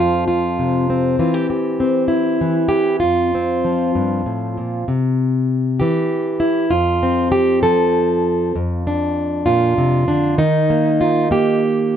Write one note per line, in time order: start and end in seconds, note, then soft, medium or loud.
0.00 1.20 F2 medium
0.00 1.16 F3 medium
0.00 0.89 C4 soft
0.00 0.26 F4 medium
0.28 1.18 F4 medium
0.59 1.16 C3 medium
0.90 1.80 C4 soft
1.19 2.40 E3 medium
1.19 1.34 F4 soft
1.34 1.49 G4 soft
1.50 2.68 G4 soft
1.80 3.34 C4 medium
2.08 3.01 E4 medium
2.41 2.99 E3 medium
2.69 3.00 G4 loud
3.00 3.95 F2 medium
3.00 4.87 F4 medium
3.35 4.85 C4 soft
3.65 4.85 F3 medium
3.95 4.26 G2 medium
4.26 4.57 A2 medium
4.57 4.88 A#2 medium
4.88 5.80 C3 medium
5.80 6.69 E3 medium
5.80 6.70 G4 medium
6.40 6.71 E4 medium
6.71 8.54 F2 medium
6.71 7.31 F4 medium
7.03 8.56 C4 soft
7.32 7.62 G4 loud
7.63 8.52 F3 medium
7.63 8.55 A4 medium
8.56 10.38 F2 medium
8.87 10.07 D4 medium
9.46 9.77 A#2 medium
9.46 10.38 F4 medium
9.78 10.08 C3 medium
10.08 10.39 D3 medium
10.08 10.38 D4 medium
10.38 11.97 D#3 medium
10.38 11.61 D#4 medium
10.70 11.30 A#3 soft
11.01 11.31 F4 medium
11.31 11.97 A#3 medium
11.31 11.97 G4 medium